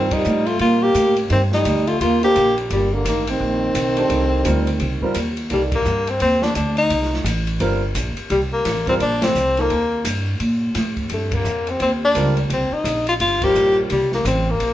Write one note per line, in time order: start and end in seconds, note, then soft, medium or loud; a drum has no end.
0.00 0.24 G2 medium
0.00 0.15 D#3 medium
0.00 0.87 G3 medium
0.00 0.14 C4 medium
0.00 0.87 C4 soft
0.00 0.88 F4 medium
0.00 0.88 A#4 medium
0.11 0.49 G3 medium
0.11 0.48 D#4 medium
0.11 kick medium
0.11 ride medium
0.24 0.59 A2 medium
0.24 hi-hat pedal medium
0.46 0.59 A3 medium
0.46 0.60 F4 medium
0.46 ride soft
0.59 0.94 A#2 medium
0.59 0.81 A#3 medium
0.59 0.84 F4 loud
0.59 ride medium
0.81 1.16 A#3 medium
0.81 1.17 G4 loud
0.95 1.29 A2 medium
0.95 hi-hat pedal medium
0.95 ride medium
1.16 ride soft
1.29 1.64 G2 medium
1.29 1.39 D#3 medium
1.29 1.42 C4 medium
1.29 ride medium
1.52 1.89 G3 medium
1.52 1.90 D#4 medium
1.52 snare soft
1.65 1.99 D2 medium
1.65 hi-hat pedal medium
1.65 ride medium
1.87 1.99 A3 medium
1.87 2.01 F4 medium
1.87 ride soft
2.00 2.34 D#2 medium
2.00 2.20 A#3 medium
2.00 2.21 F4 medium
2.00 ride medium
2.21 2.34 A3 medium
2.21 2.54 A#3 medium
2.21 2.34 D4 soft
2.21 2.34 G4 medium
2.21 2.56 G4 loud
2.21 2.35 C5 medium
2.21 ride soft
2.35 2.69 A#1 medium
2.35 hi-hat pedal medium
2.35 ride medium
2.58 ride soft
2.70 3.04 G1 medium
2.70 2.95 A#2 medium
2.70 2.96 G3 medium
2.70 ride medium
2.93 3.05 D3 medium
2.93 3.06 A#3 medium
3.05 3.39 A1 medium
3.05 3.27 D#3 medium
3.05 3.31 A#3 medium
3.05 hi-hat pedal medium
3.05 ride medium
3.27 5.15 D#3 medium
3.27 5.16 C4 medium
3.27 ride medium
3.40 3.74 A#1 medium
3.75 4.09 B1 medium
3.75 hi-hat pedal soft
3.75 ride medium
3.97 4.42 A3 medium
3.97 4.43 D4 medium
3.97 4.43 G4 medium
3.97 4.43 C5 medium
3.97 ride soft
4.10 4.44 C2 medium
4.10 ride medium
4.45 4.79 D2 medium
4.45 4.65 G3 medium
4.45 4.65 C4 soft
4.45 4.65 F4 soft
4.45 4.66 A#4 medium
4.45 hi-hat pedal medium
4.45 ride medium
4.67 ride soft
4.80 5.01 C2 medium
4.80 ride medium
5.02 5.14 G3 medium
5.02 5.14 C4 medium
5.02 5.14 F4 medium
5.02 5.15 A#4 medium
5.02 muted upright bass stroke soft
5.02 kick soft
5.14 5.49 D#2 medium
5.14 hi-hat pedal soft
5.14 ride medium
5.37 ride soft
5.50 5.84 C2 medium
5.50 5.63 G3 medium
5.50 5.70 A#3 medium
5.50 5.70 D#4 soft
5.50 5.70 A4 soft
5.50 5.71 D5 medium
5.50 ride soft
5.72 6.11 A#3 medium
5.72 kick medium
5.72 ride medium
5.85 6.19 G2 medium
5.85 hi-hat pedal medium
6.07 6.21 C4 medium
6.07 ride soft
6.20 6.55 D#2 medium
6.20 6.45 C4 loud
6.20 ride medium
6.42 6.56 D4 loud
6.42 snare medium
6.55 6.89 D2 medium
6.55 6.76 D4 medium
6.55 hi-hat pedal medium
6.55 ride medium
6.77 7.22 D#4 medium
6.77 ride soft
6.90 7.24 C2 medium
6.90 ride medium
7.02 snare soft
7.14 snare soft
7.24 7.59 A1 medium
7.24 hi-hat pedal medium
7.24 ride medium
7.47 ride soft
7.60 7.94 G1 medium
7.60 7.80 G3 medium
7.60 7.80 C4 medium
7.60 7.80 F4 medium
7.60 7.80 A#4 medium
7.60 ride medium
7.95 8.15 A#1 medium
7.95 hi-hat pedal medium
7.95 ride medium
8.17 muted upright bass stroke soft
8.17 ride soft
8.30 8.64 C2 medium
8.30 8.41 G3 medium
8.30 ride medium
8.53 8.85 A#3 medium
8.65 8.99 A1 medium
8.65 snare soft
8.65 hi-hat pedal medium
8.65 ride medium
8.87 8.99 G3 medium
8.87 8.99 C4 medium
8.87 8.94 C4 medium
8.87 9.00 F4 medium
8.87 9.00 A#4 medium
8.87 kick soft
8.87 ride soft
9.00 9.34 A#1 medium
9.00 9.26 D4 loud
9.00 ride medium
9.22 9.62 C4 loud
9.22 snare medium
9.22 ride medium
9.35 9.69 C2 medium
9.35 hi-hat pedal medium
9.57 9.69 F3 medium
9.57 9.69 A#3 medium
9.57 10.07 A#3 medium
9.57 9.69 D#4 medium
9.57 9.70 A4 medium
9.57 ride soft
9.70 10.04 D#2 medium
9.70 ride soft
10.05 10.39 G2 medium
10.05 hi-hat pedal medium
10.05 ride medium
10.40 10.74 A#2 medium
10.40 ride medium
10.75 11.09 A2 medium
10.75 snare soft
10.75 hi-hat pedal medium
10.75 ride medium
10.97 kick medium
10.97 ride soft
11.09 11.44 G2 medium
11.09 11.36 A3 medium
11.09 ride medium
11.32 11.71 A#3 medium
11.32 kick medium
11.32 ride medium
11.45 11.79 F2 medium
11.45 hi-hat pedal medium
11.67 11.81 C4 medium
11.67 ride soft
11.80 12.14 D#2 medium
11.80 11.92 C4 medium
11.80 ride medium
12.05 12.36 D4 loud
12.15 12.49 C#2 medium
12.15 12.34 G3 medium
12.15 12.35 C4 medium
12.15 12.35 F4 medium
12.15 12.36 A#4 medium
12.15 hi-hat pedal medium
12.15 ride medium
12.37 ride soft
12.49 12.70 C2 medium
12.49 12.75 C4 medium
12.49 ride medium
12.71 13.08 D#4 medium
12.71 muted upright bass stroke soft
12.84 13.19 A#1 medium
12.84 hi-hat pedal medium
12.84 ride medium
13.07 13.14 F4 medium
13.07 ride soft
13.20 13.54 G1 medium
13.20 13.45 F4 medium
13.20 ride medium
13.42 13.88 G3 medium
13.42 13.88 C4 medium
13.42 13.88 F4 medium
13.42 13.78 G4 loud
13.42 13.89 A#4 medium
13.42 kick medium
13.42 ride medium
13.55 13.89 A#1 medium
13.55 hi-hat pedal medium
13.90 14.24 C2 medium
13.90 14.12 G3 medium
13.90 ride medium
14.12 14.25 A#3 medium
14.12 snare soft
14.25 14.59 A1 loud
14.25 14.52 C4 medium
14.25 hi-hat pedal medium
14.25 ride medium
14.50 14.73 A#3 medium
14.60 14.73 A#1 medium
14.60 ride medium